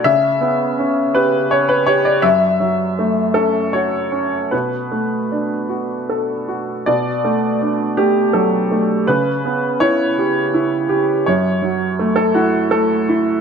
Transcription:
\new Staff \with { instrumentName = "Upright piano" } { \time 3/4 \key b \minor \tempo 4 = 82 << { e''4. b'8 cis''16 b'16 cis''16 d''16 | e''4. a'8 cis''4 | b'2 r4 | d''4. g'8 a'4 |
b'4 cis''2 | cis''4~ cis''16 a'16 fis'8 a'4 | } \\ { cis8 b8 cis'8 g'8 cis'8 g'8 | fis,8 fis8 a8 cis'8 fis'8 cis'8 | b,8 a8 d'8 fis'8 a'8 fis'8 | b,8 a8 d'8 a8 fis8 a8 |
cis8 b8 e'8 g'8 e'8 g'8 | fis,8 fis8 a8 e'8 a8 e'8 | } >> }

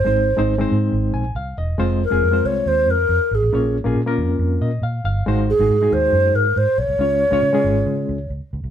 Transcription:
<<
  \new Staff \with { instrumentName = "Alto flute" } { \time 4/4 \key aes \mixolydian \tempo 4 = 138 c''4. r2 r8 | r8 bes'4 des''8 c''8 bes'4 aes'8~ | aes'8 r2. r8 | r8 aes'4 c''4 bes'8 c''8 des''8~ |
des''2. r4 | }
  \new Staff \with { instrumentName = "Reed electric piano" } { \time 4/4 \key aes \mixolydian << { r2 r8 aes''8 f''8 ees''8~ | ees''8 r2. r8 | r2 r8 ees''8 f''8 f''8~ | f''8 r2. r8 |
r1 | } \\ { <aes c' ees' c''>8 r16 <aes c' ees' c''>16 r16 <aes c' ees' c''>4. r4 r16 | <aes c' f' c''>8 r16 <aes c' f' aes'>16 r16 <aes c' f' c''>4. r4 r16 | <bes des' f' des''>8 r16 <bes des' f' aes'>16 r16 <bes des' f' bes'>4. r4 r16 | <aes ees' ges' c''>8 r16 <aes ees' ges' aes'>16 r16 <aes ees' ges' aes'>4. r4 r16 |
<aes des' f' des''>8 r16 <aes des' f' des''>16 r16 <aes des' f' aes'>4. r4 r16 | } >> }
  \new Staff \with { instrumentName = "Fingered electric bass" } { \clef bass \time 4/4 \key aes \mixolydian aes,,8. aes,,8. aes,8 aes,,8 bes,,8 c,8 fes,,8 | f,,8. f,,16 f,8 c,8 ees,8 f,8 f,16 r16 aes,,16 a,,16 | r8. bes,,16 bes,8 f,8 f,8 bes,8 bes,8 g,,8 | aes,,8. aes,,16 aes,8 ees,8 ges,8 aes,8 aes,16 r16 ces,16 c,16 |
des,8. des,16 des8 aes,,8 des8 des,8 des,16 r16 des,16 c,16 | }
>>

